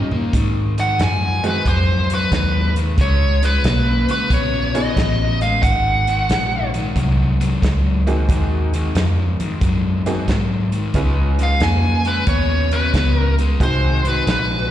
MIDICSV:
0, 0, Header, 1, 7, 480
1, 0, Start_track
1, 0, Tempo, 662983
1, 245, Time_signature, 4, 2, 24, 8
1, 10649, End_track
2, 0, Start_track
2, 0, Title_t, "Lead electric guitar"
2, 0, Program_c, 0, 29
2, 580, Note_on_c, 0, 78, 86
2, 736, Note_off_c, 0, 78, 0
2, 746, Note_on_c, 0, 80, 94
2, 1033, Note_off_c, 0, 80, 0
2, 1060, Note_on_c, 0, 71, 81
2, 1215, Note_off_c, 0, 71, 0
2, 1218, Note_on_c, 0, 72, 93
2, 1509, Note_off_c, 0, 72, 0
2, 1552, Note_on_c, 0, 71, 67
2, 1988, Note_off_c, 0, 71, 0
2, 2180, Note_on_c, 0, 73, 84
2, 2494, Note_on_c, 0, 71, 82
2, 2500, Note_off_c, 0, 73, 0
2, 2972, Note_off_c, 0, 71, 0
2, 2980, Note_on_c, 0, 71, 78
2, 3134, Note_off_c, 0, 71, 0
2, 3136, Note_on_c, 0, 73, 85
2, 3427, Note_off_c, 0, 73, 0
2, 3451, Note_on_c, 0, 75, 84
2, 3897, Note_off_c, 0, 75, 0
2, 3924, Note_on_c, 0, 77, 90
2, 4072, Note_off_c, 0, 77, 0
2, 4075, Note_on_c, 0, 78, 96
2, 4849, Note_off_c, 0, 78, 0
2, 8276, Note_on_c, 0, 77, 97
2, 8419, Note_off_c, 0, 77, 0
2, 8421, Note_on_c, 0, 80, 94
2, 8740, Note_on_c, 0, 71, 85
2, 8744, Note_off_c, 0, 80, 0
2, 8882, Note_off_c, 0, 71, 0
2, 8892, Note_on_c, 0, 73, 93
2, 9212, Note_on_c, 0, 71, 68
2, 9220, Note_off_c, 0, 73, 0
2, 9531, Note_off_c, 0, 71, 0
2, 9531, Note_on_c, 0, 70, 68
2, 9662, Note_off_c, 0, 70, 0
2, 9869, Note_on_c, 0, 72, 81
2, 10189, Note_off_c, 0, 72, 0
2, 10195, Note_on_c, 0, 71, 77
2, 10346, Note_off_c, 0, 71, 0
2, 10356, Note_on_c, 0, 71, 79
2, 10649, Note_off_c, 0, 71, 0
2, 10649, End_track
3, 0, Start_track
3, 0, Title_t, "Honky-tonk piano"
3, 0, Program_c, 1, 3
3, 1039, Note_on_c, 1, 56, 73
3, 1040, Note_on_c, 1, 60, 62
3, 1040, Note_on_c, 1, 63, 61
3, 1041, Note_on_c, 1, 66, 63
3, 1044, Note_on_c, 1, 68, 75
3, 1184, Note_off_c, 1, 56, 0
3, 1185, Note_off_c, 1, 60, 0
3, 1185, Note_off_c, 1, 63, 0
3, 1186, Note_off_c, 1, 66, 0
3, 1187, Note_off_c, 1, 68, 0
3, 3432, Note_on_c, 1, 59, 68
3, 3435, Note_on_c, 1, 61, 62
3, 3436, Note_on_c, 1, 63, 68
3, 3438, Note_on_c, 1, 65, 67
3, 3440, Note_on_c, 1, 68, 73
3, 3579, Note_off_c, 1, 59, 0
3, 3581, Note_off_c, 1, 61, 0
3, 3581, Note_off_c, 1, 63, 0
3, 3583, Note_off_c, 1, 65, 0
3, 3584, Note_off_c, 1, 68, 0
3, 5840, Note_on_c, 1, 58, 69
3, 5840, Note_on_c, 1, 60, 66
3, 5844, Note_on_c, 1, 66, 60
3, 5845, Note_on_c, 1, 63, 65
3, 5847, Note_on_c, 1, 68, 73
3, 6449, Note_off_c, 1, 58, 0
3, 6449, Note_off_c, 1, 60, 0
3, 6450, Note_off_c, 1, 66, 0
3, 6451, Note_off_c, 1, 63, 0
3, 6452, Note_off_c, 1, 68, 0
3, 7283, Note_on_c, 1, 58, 77
3, 7283, Note_on_c, 1, 60, 69
3, 7286, Note_on_c, 1, 63, 63
3, 7288, Note_on_c, 1, 66, 65
3, 7288, Note_on_c, 1, 68, 77
3, 7426, Note_off_c, 1, 60, 0
3, 7427, Note_off_c, 1, 58, 0
3, 7428, Note_off_c, 1, 63, 0
3, 7429, Note_off_c, 1, 66, 0
3, 7429, Note_off_c, 1, 68, 0
3, 7928, Note_on_c, 1, 59, 71
3, 7929, Note_on_c, 1, 61, 62
3, 7929, Note_on_c, 1, 63, 61
3, 7932, Note_on_c, 1, 65, 61
3, 7932, Note_on_c, 1, 68, 71
3, 8664, Note_off_c, 1, 59, 0
3, 8664, Note_off_c, 1, 61, 0
3, 8664, Note_off_c, 1, 63, 0
3, 8666, Note_off_c, 1, 65, 0
3, 8666, Note_off_c, 1, 68, 0
3, 9850, Note_on_c, 1, 56, 64
3, 9851, Note_on_c, 1, 60, 61
3, 9852, Note_on_c, 1, 63, 61
3, 9853, Note_on_c, 1, 68, 72
3, 9854, Note_on_c, 1, 66, 60
3, 10587, Note_off_c, 1, 56, 0
3, 10588, Note_off_c, 1, 60, 0
3, 10588, Note_off_c, 1, 63, 0
3, 10589, Note_off_c, 1, 66, 0
3, 10589, Note_off_c, 1, 68, 0
3, 10649, End_track
4, 0, Start_track
4, 0, Title_t, "Overdriven electric guitar"
4, 0, Program_c, 2, 29
4, 86, Note_on_c, 2, 51, 63
4, 88, Note_on_c, 2, 58, 78
4, 229, Note_off_c, 2, 51, 0
4, 230, Note_off_c, 2, 58, 0
4, 244, Note_on_c, 2, 44, 79
4, 248, Note_on_c, 2, 51, 85
4, 532, Note_off_c, 2, 44, 0
4, 534, Note_off_c, 2, 51, 0
4, 563, Note_on_c, 2, 44, 72
4, 564, Note_on_c, 2, 51, 74
4, 707, Note_off_c, 2, 44, 0
4, 707, Note_off_c, 2, 51, 0
4, 727, Note_on_c, 2, 44, 74
4, 731, Note_on_c, 2, 53, 90
4, 1013, Note_off_c, 2, 44, 0
4, 1015, Note_off_c, 2, 53, 0
4, 1043, Note_on_c, 2, 44, 67
4, 1048, Note_on_c, 2, 51, 81
4, 1186, Note_off_c, 2, 44, 0
4, 1189, Note_off_c, 2, 51, 0
4, 1201, Note_on_c, 2, 44, 74
4, 1206, Note_on_c, 2, 54, 88
4, 1490, Note_off_c, 2, 44, 0
4, 1493, Note_off_c, 2, 54, 0
4, 1525, Note_on_c, 2, 44, 77
4, 1529, Note_on_c, 2, 54, 81
4, 1667, Note_off_c, 2, 44, 0
4, 1669, Note_off_c, 2, 54, 0
4, 1684, Note_on_c, 2, 44, 77
4, 1687, Note_on_c, 2, 54, 86
4, 1971, Note_off_c, 2, 44, 0
4, 1972, Note_off_c, 2, 54, 0
4, 2005, Note_on_c, 2, 44, 59
4, 2008, Note_on_c, 2, 51, 70
4, 2146, Note_off_c, 2, 44, 0
4, 2148, Note_off_c, 2, 51, 0
4, 2160, Note_on_c, 2, 49, 79
4, 2166, Note_on_c, 2, 56, 97
4, 2449, Note_off_c, 2, 49, 0
4, 2452, Note_off_c, 2, 56, 0
4, 2479, Note_on_c, 2, 49, 71
4, 2483, Note_on_c, 2, 56, 74
4, 2623, Note_off_c, 2, 49, 0
4, 2626, Note_off_c, 2, 56, 0
4, 2641, Note_on_c, 2, 49, 78
4, 2646, Note_on_c, 2, 58, 99
4, 2929, Note_off_c, 2, 49, 0
4, 2931, Note_off_c, 2, 58, 0
4, 2961, Note_on_c, 2, 49, 66
4, 2963, Note_on_c, 2, 56, 76
4, 3104, Note_off_c, 2, 49, 0
4, 3105, Note_off_c, 2, 56, 0
4, 3118, Note_on_c, 2, 49, 87
4, 3122, Note_on_c, 2, 59, 93
4, 3408, Note_off_c, 2, 49, 0
4, 3410, Note_off_c, 2, 59, 0
4, 3438, Note_on_c, 2, 49, 75
4, 3442, Note_on_c, 2, 59, 88
4, 3583, Note_off_c, 2, 49, 0
4, 3585, Note_off_c, 2, 59, 0
4, 3599, Note_on_c, 2, 49, 74
4, 3601, Note_on_c, 2, 59, 84
4, 3888, Note_off_c, 2, 49, 0
4, 3889, Note_off_c, 2, 59, 0
4, 3920, Note_on_c, 2, 49, 56
4, 3925, Note_on_c, 2, 56, 78
4, 4063, Note_off_c, 2, 49, 0
4, 4066, Note_off_c, 2, 56, 0
4, 4079, Note_on_c, 2, 44, 69
4, 4081, Note_on_c, 2, 51, 81
4, 4368, Note_off_c, 2, 44, 0
4, 4369, Note_off_c, 2, 51, 0
4, 4402, Note_on_c, 2, 44, 70
4, 4405, Note_on_c, 2, 51, 75
4, 4544, Note_off_c, 2, 44, 0
4, 4546, Note_off_c, 2, 51, 0
4, 4561, Note_on_c, 2, 44, 85
4, 4566, Note_on_c, 2, 53, 88
4, 4849, Note_off_c, 2, 44, 0
4, 4851, Note_off_c, 2, 53, 0
4, 4880, Note_on_c, 2, 44, 72
4, 4883, Note_on_c, 2, 51, 76
4, 5023, Note_off_c, 2, 44, 0
4, 5025, Note_off_c, 2, 51, 0
4, 5041, Note_on_c, 2, 44, 81
4, 5044, Note_on_c, 2, 54, 84
4, 5329, Note_off_c, 2, 44, 0
4, 5331, Note_off_c, 2, 54, 0
4, 5359, Note_on_c, 2, 44, 77
4, 5364, Note_on_c, 2, 54, 85
4, 5503, Note_off_c, 2, 44, 0
4, 5506, Note_off_c, 2, 54, 0
4, 5517, Note_on_c, 2, 44, 70
4, 5520, Note_on_c, 2, 54, 86
4, 5807, Note_off_c, 2, 44, 0
4, 5809, Note_off_c, 2, 54, 0
4, 5839, Note_on_c, 2, 44, 61
4, 5841, Note_on_c, 2, 51, 71
4, 5984, Note_off_c, 2, 44, 0
4, 5984, Note_off_c, 2, 51, 0
4, 6002, Note_on_c, 2, 44, 73
4, 6005, Note_on_c, 2, 51, 86
4, 6290, Note_off_c, 2, 44, 0
4, 6292, Note_off_c, 2, 51, 0
4, 6331, Note_on_c, 2, 44, 70
4, 6333, Note_on_c, 2, 51, 77
4, 6470, Note_off_c, 2, 44, 0
4, 6471, Note_off_c, 2, 51, 0
4, 6488, Note_on_c, 2, 44, 74
4, 6491, Note_on_c, 2, 53, 94
4, 6774, Note_off_c, 2, 44, 0
4, 6775, Note_off_c, 2, 53, 0
4, 6805, Note_on_c, 2, 44, 66
4, 6811, Note_on_c, 2, 51, 68
4, 6947, Note_off_c, 2, 44, 0
4, 6950, Note_off_c, 2, 51, 0
4, 6969, Note_on_c, 2, 44, 83
4, 6973, Note_on_c, 2, 54, 79
4, 7255, Note_off_c, 2, 44, 0
4, 7256, Note_off_c, 2, 54, 0
4, 7288, Note_on_c, 2, 44, 77
4, 7294, Note_on_c, 2, 54, 89
4, 7429, Note_off_c, 2, 44, 0
4, 7432, Note_off_c, 2, 54, 0
4, 7450, Note_on_c, 2, 44, 75
4, 7452, Note_on_c, 2, 54, 83
4, 7735, Note_off_c, 2, 44, 0
4, 7737, Note_off_c, 2, 54, 0
4, 7767, Note_on_c, 2, 44, 68
4, 7771, Note_on_c, 2, 51, 73
4, 7909, Note_off_c, 2, 44, 0
4, 7911, Note_off_c, 2, 51, 0
4, 7928, Note_on_c, 2, 49, 73
4, 7932, Note_on_c, 2, 56, 81
4, 8215, Note_off_c, 2, 49, 0
4, 8217, Note_off_c, 2, 56, 0
4, 8244, Note_on_c, 2, 49, 66
4, 8251, Note_on_c, 2, 56, 78
4, 8388, Note_off_c, 2, 49, 0
4, 8391, Note_off_c, 2, 56, 0
4, 8407, Note_on_c, 2, 49, 75
4, 8409, Note_on_c, 2, 58, 81
4, 8695, Note_off_c, 2, 49, 0
4, 8696, Note_off_c, 2, 58, 0
4, 8729, Note_on_c, 2, 49, 70
4, 8733, Note_on_c, 2, 56, 70
4, 8871, Note_off_c, 2, 49, 0
4, 8873, Note_off_c, 2, 56, 0
4, 8893, Note_on_c, 2, 49, 74
4, 8896, Note_on_c, 2, 59, 83
4, 9179, Note_off_c, 2, 49, 0
4, 9180, Note_off_c, 2, 59, 0
4, 9215, Note_on_c, 2, 49, 79
4, 9218, Note_on_c, 2, 59, 85
4, 9355, Note_off_c, 2, 49, 0
4, 9356, Note_off_c, 2, 59, 0
4, 9374, Note_on_c, 2, 49, 72
4, 9378, Note_on_c, 2, 59, 83
4, 9660, Note_off_c, 2, 49, 0
4, 9662, Note_off_c, 2, 59, 0
4, 9695, Note_on_c, 2, 49, 59
4, 9700, Note_on_c, 2, 56, 80
4, 9835, Note_off_c, 2, 49, 0
4, 9838, Note_off_c, 2, 56, 0
4, 9851, Note_on_c, 2, 44, 79
4, 9855, Note_on_c, 2, 51, 86
4, 10139, Note_off_c, 2, 44, 0
4, 10141, Note_off_c, 2, 51, 0
4, 10169, Note_on_c, 2, 44, 70
4, 10173, Note_on_c, 2, 51, 80
4, 10313, Note_off_c, 2, 44, 0
4, 10315, Note_off_c, 2, 51, 0
4, 10330, Note_on_c, 2, 44, 83
4, 10336, Note_on_c, 2, 53, 90
4, 10619, Note_off_c, 2, 44, 0
4, 10622, Note_off_c, 2, 53, 0
4, 10649, End_track
5, 0, Start_track
5, 0, Title_t, "Fingered electric bass"
5, 0, Program_c, 3, 33
5, 0, Note_on_c, 3, 43, 105
5, 230, Note_off_c, 3, 43, 0
5, 240, Note_on_c, 3, 44, 77
5, 707, Note_off_c, 3, 44, 0
5, 720, Note_on_c, 3, 42, 82
5, 1186, Note_off_c, 3, 42, 0
5, 1197, Note_on_c, 3, 41, 74
5, 1664, Note_off_c, 3, 41, 0
5, 1678, Note_on_c, 3, 39, 93
5, 2145, Note_off_c, 3, 39, 0
5, 2157, Note_on_c, 3, 37, 84
5, 2624, Note_off_c, 3, 37, 0
5, 2638, Note_on_c, 3, 35, 89
5, 2937, Note_off_c, 3, 35, 0
5, 3114, Note_on_c, 3, 34, 78
5, 3582, Note_off_c, 3, 34, 0
5, 3594, Note_on_c, 3, 33, 97
5, 4062, Note_off_c, 3, 33, 0
5, 4076, Note_on_c, 3, 32, 78
5, 4543, Note_off_c, 3, 32, 0
5, 4559, Note_on_c, 3, 34, 89
5, 5025, Note_off_c, 3, 34, 0
5, 5035, Note_on_c, 3, 36, 81
5, 5503, Note_off_c, 3, 36, 0
5, 5523, Note_on_c, 3, 37, 92
5, 5987, Note_off_c, 3, 37, 0
5, 6002, Note_on_c, 3, 39, 79
5, 6467, Note_off_c, 3, 39, 0
5, 6482, Note_on_c, 3, 41, 88
5, 6780, Note_off_c, 3, 41, 0
5, 6962, Note_on_c, 3, 42, 80
5, 7428, Note_off_c, 3, 42, 0
5, 7440, Note_on_c, 3, 44, 90
5, 7908, Note_off_c, 3, 44, 0
5, 7921, Note_on_c, 3, 37, 83
5, 8389, Note_off_c, 3, 37, 0
5, 8402, Note_on_c, 3, 41, 86
5, 8870, Note_off_c, 3, 41, 0
5, 8884, Note_on_c, 3, 39, 78
5, 9352, Note_off_c, 3, 39, 0
5, 9368, Note_on_c, 3, 37, 91
5, 9834, Note_off_c, 3, 37, 0
5, 9847, Note_on_c, 3, 36, 78
5, 10314, Note_off_c, 3, 36, 0
5, 10330, Note_on_c, 3, 34, 92
5, 10649, Note_off_c, 3, 34, 0
5, 10649, End_track
6, 0, Start_track
6, 0, Title_t, "Muted fingered electric bass strokes"
6, 6804, Note_on_c, 9, 29, 35
6, 6877, Note_off_c, 9, 29, 0
6, 10649, End_track
7, 0, Start_track
7, 0, Title_t, "Drums"
7, 83, Note_on_c, 9, 43, 85
7, 155, Note_off_c, 9, 43, 0
7, 241, Note_on_c, 9, 36, 106
7, 242, Note_on_c, 9, 42, 85
7, 314, Note_off_c, 9, 36, 0
7, 314, Note_off_c, 9, 42, 0
7, 564, Note_on_c, 9, 42, 61
7, 573, Note_on_c, 9, 38, 32
7, 636, Note_off_c, 9, 42, 0
7, 646, Note_off_c, 9, 38, 0
7, 720, Note_on_c, 9, 42, 84
7, 729, Note_on_c, 9, 38, 110
7, 792, Note_off_c, 9, 42, 0
7, 802, Note_off_c, 9, 38, 0
7, 1041, Note_on_c, 9, 42, 60
7, 1113, Note_off_c, 9, 42, 0
7, 1198, Note_on_c, 9, 36, 100
7, 1200, Note_on_c, 9, 42, 75
7, 1270, Note_off_c, 9, 36, 0
7, 1272, Note_off_c, 9, 42, 0
7, 1520, Note_on_c, 9, 42, 62
7, 1592, Note_off_c, 9, 42, 0
7, 1677, Note_on_c, 9, 36, 68
7, 1678, Note_on_c, 9, 42, 82
7, 1687, Note_on_c, 9, 38, 102
7, 1750, Note_off_c, 9, 36, 0
7, 1750, Note_off_c, 9, 42, 0
7, 1760, Note_off_c, 9, 38, 0
7, 1999, Note_on_c, 9, 42, 62
7, 2071, Note_off_c, 9, 42, 0
7, 2156, Note_on_c, 9, 36, 108
7, 2157, Note_on_c, 9, 42, 79
7, 2228, Note_off_c, 9, 36, 0
7, 2230, Note_off_c, 9, 42, 0
7, 2480, Note_on_c, 9, 42, 58
7, 2489, Note_on_c, 9, 38, 31
7, 2552, Note_off_c, 9, 42, 0
7, 2562, Note_off_c, 9, 38, 0
7, 2636, Note_on_c, 9, 42, 78
7, 2646, Note_on_c, 9, 38, 103
7, 2709, Note_off_c, 9, 42, 0
7, 2718, Note_off_c, 9, 38, 0
7, 2958, Note_on_c, 9, 42, 56
7, 3030, Note_off_c, 9, 42, 0
7, 3115, Note_on_c, 9, 36, 102
7, 3117, Note_on_c, 9, 42, 75
7, 3188, Note_off_c, 9, 36, 0
7, 3190, Note_off_c, 9, 42, 0
7, 3438, Note_on_c, 9, 42, 58
7, 3511, Note_off_c, 9, 42, 0
7, 3595, Note_on_c, 9, 36, 75
7, 3597, Note_on_c, 9, 42, 79
7, 3607, Note_on_c, 9, 38, 96
7, 3667, Note_off_c, 9, 36, 0
7, 3670, Note_off_c, 9, 42, 0
7, 3679, Note_off_c, 9, 38, 0
7, 3917, Note_on_c, 9, 42, 56
7, 3989, Note_off_c, 9, 42, 0
7, 4075, Note_on_c, 9, 36, 111
7, 4075, Note_on_c, 9, 42, 80
7, 4147, Note_off_c, 9, 36, 0
7, 4147, Note_off_c, 9, 42, 0
7, 4397, Note_on_c, 9, 42, 59
7, 4469, Note_off_c, 9, 42, 0
7, 4557, Note_on_c, 9, 42, 81
7, 4566, Note_on_c, 9, 38, 105
7, 4629, Note_off_c, 9, 42, 0
7, 4639, Note_off_c, 9, 38, 0
7, 4880, Note_on_c, 9, 42, 59
7, 4952, Note_off_c, 9, 42, 0
7, 5038, Note_on_c, 9, 36, 100
7, 5042, Note_on_c, 9, 42, 81
7, 5110, Note_off_c, 9, 36, 0
7, 5114, Note_off_c, 9, 42, 0
7, 5364, Note_on_c, 9, 42, 63
7, 5437, Note_off_c, 9, 42, 0
7, 5520, Note_on_c, 9, 36, 68
7, 5525, Note_on_c, 9, 42, 79
7, 5535, Note_on_c, 9, 38, 100
7, 5592, Note_off_c, 9, 36, 0
7, 5598, Note_off_c, 9, 42, 0
7, 5607, Note_off_c, 9, 38, 0
7, 5845, Note_on_c, 9, 42, 59
7, 5917, Note_off_c, 9, 42, 0
7, 6001, Note_on_c, 9, 36, 103
7, 6005, Note_on_c, 9, 42, 83
7, 6073, Note_off_c, 9, 36, 0
7, 6077, Note_off_c, 9, 42, 0
7, 6324, Note_on_c, 9, 42, 64
7, 6397, Note_off_c, 9, 42, 0
7, 6482, Note_on_c, 9, 42, 82
7, 6491, Note_on_c, 9, 38, 111
7, 6554, Note_off_c, 9, 42, 0
7, 6563, Note_off_c, 9, 38, 0
7, 6804, Note_on_c, 9, 42, 57
7, 6877, Note_off_c, 9, 42, 0
7, 6960, Note_on_c, 9, 42, 78
7, 6961, Note_on_c, 9, 36, 101
7, 7032, Note_off_c, 9, 42, 0
7, 7033, Note_off_c, 9, 36, 0
7, 7284, Note_on_c, 9, 42, 57
7, 7356, Note_off_c, 9, 42, 0
7, 7442, Note_on_c, 9, 36, 76
7, 7443, Note_on_c, 9, 42, 70
7, 7452, Note_on_c, 9, 38, 101
7, 7515, Note_off_c, 9, 36, 0
7, 7515, Note_off_c, 9, 42, 0
7, 7525, Note_off_c, 9, 38, 0
7, 7762, Note_on_c, 9, 42, 53
7, 7835, Note_off_c, 9, 42, 0
7, 7920, Note_on_c, 9, 42, 81
7, 7923, Note_on_c, 9, 36, 104
7, 7992, Note_off_c, 9, 42, 0
7, 7995, Note_off_c, 9, 36, 0
7, 8245, Note_on_c, 9, 42, 57
7, 8254, Note_on_c, 9, 38, 32
7, 8317, Note_off_c, 9, 42, 0
7, 8327, Note_off_c, 9, 38, 0
7, 8401, Note_on_c, 9, 42, 79
7, 8410, Note_on_c, 9, 38, 95
7, 8473, Note_off_c, 9, 42, 0
7, 8482, Note_off_c, 9, 38, 0
7, 8722, Note_on_c, 9, 42, 54
7, 8795, Note_off_c, 9, 42, 0
7, 8881, Note_on_c, 9, 42, 82
7, 8884, Note_on_c, 9, 36, 102
7, 8954, Note_off_c, 9, 42, 0
7, 8957, Note_off_c, 9, 36, 0
7, 9205, Note_on_c, 9, 42, 59
7, 9278, Note_off_c, 9, 42, 0
7, 9367, Note_on_c, 9, 36, 78
7, 9368, Note_on_c, 9, 42, 81
7, 9377, Note_on_c, 9, 38, 101
7, 9439, Note_off_c, 9, 36, 0
7, 9440, Note_off_c, 9, 42, 0
7, 9450, Note_off_c, 9, 38, 0
7, 9691, Note_on_c, 9, 42, 59
7, 9763, Note_off_c, 9, 42, 0
7, 9848, Note_on_c, 9, 36, 111
7, 9848, Note_on_c, 9, 42, 88
7, 9921, Note_off_c, 9, 36, 0
7, 9921, Note_off_c, 9, 42, 0
7, 10172, Note_on_c, 9, 42, 61
7, 10244, Note_off_c, 9, 42, 0
7, 10333, Note_on_c, 9, 42, 88
7, 10343, Note_on_c, 9, 38, 102
7, 10406, Note_off_c, 9, 42, 0
7, 10415, Note_off_c, 9, 38, 0
7, 10649, End_track
0, 0, End_of_file